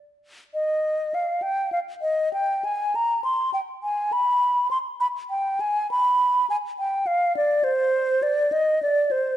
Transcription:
0.54 D#5
1.14 F5
1.42 G5
1.72 F5
2.02 D#5
2.33 G5
2.65 G#5
2.95 A#5
3.24 C6
3.54 G5
3.83 G#5
4.12 B5
4.71 C6
5.00 B5
5.30 G5
5.60 G#5
5.91 B5
6.50 G#5
6.79 G5
7.07 F5
7.37 D5
7.64 C5
8.23 D5
8.52 D#5
8.83 D5
9.11 C5

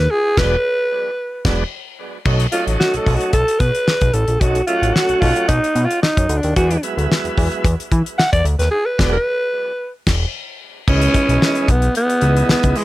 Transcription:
Already playing: B4
0.11 G#4
0.37 E1 F#3 G#3 B3 D4 B4, kick, snare, crash
1.45 E1 F#3 G#3 B3 D4, kick, snare, crash
2.25 B1 F#3 A3 C#4 D#4, kick, crash
2.40 closed hi-hat
2.52 F#3 A3 C#4 D#4 F4, closed hi-hat
2.67 A1, closed hi-hat
2.80 F#4, snare
2.94 B1 A4, closed hi-hat
3.06 B1, kick, open hi-hat
3.15 F#4
3.20 closed hi-hat
3.33 B1 A4, kick, closed hi-hat
3.48 closed hi-hat
3.59 B2 B4, kick, closed hi-hat
3.75 closed hi-hat
3.88 snare
4.01 B1, kick, closed hi-hat
4.13 A1 A4, closed hi-hat
4.28 A#1, closed hi-hat
4.41 B1 F#3 A3 C#4 D#4 F#4, kick, closed hi-hat
4.55 closed hi-hat
4.67 F#3 A3 C#4 E4 F4, closed hi-hat
4.75 F#4
4.82 A1, closed hi-hat
4.94 F#4, snare
5.09 B1, closed hi-hat
5.21 B1 F4, kick, open hi-hat
5.36 closed hi-hat
5.48 B1 D#4, kick, closed hi-hat
5.64 closed hi-hat
5.75 B2, closed hi-hat
5.84 F4
5.91 closed hi-hat
6.02 D#4, snare
6.17 F#2, kick, closed hi-hat
6.29 D2, closed hi-hat
6.38 D4
6.43 D#2, closed hi-hat
6.56 E2 F#3 G#3 B3 D4 F#4, kick, closed hi-hat
6.71 closed hi-hat
6.83 F#3 G#3 B3 E4, closed hi-hat
6.97 D2, closed hi-hat
7.12 snare
7.24 E2, closed hi-hat
7.38 E2, kick, open hi-hat
7.52 closed hi-hat
7.64 E2, kick, closed hi-hat
7.80 closed hi-hat
7.92 E3, kick, closed hi-hat
8.06 closed hi-hat
8.18 F#5, snare
8.33 E2 D5, kick, closed hi-hat
8.45 D2, closed hi-hat
8.59 D#2 B4, snare, closed hi-hat
8.71 G#4
8.86 B4
8.98 E1 F#3 G#3 B3 D4, kick, snare, crash
9.12 B4
10.07 E1, kick, snare, crash
10.88 C#2 E3 G#3 B3 C#4 D#4, kick, crash
11.02 closed hi-hat
11.14 kick, closed hi-hat
11.29 B1, closed hi-hat
11.42 snare
11.55 closed hi-hat
11.68 B1 B3, kick, closed hi-hat
11.82 closed hi-hat
11.95 B3, closed hi-hat
12.10 closed hi-hat
12.21 C#2 E3 G#3 B3 D#4, closed hi-hat
12.37 closed hi-hat
12.49 C#2 B3, snare
12.63 C#2, kick, closed hi-hat
12.76 G#3, open hi-hat

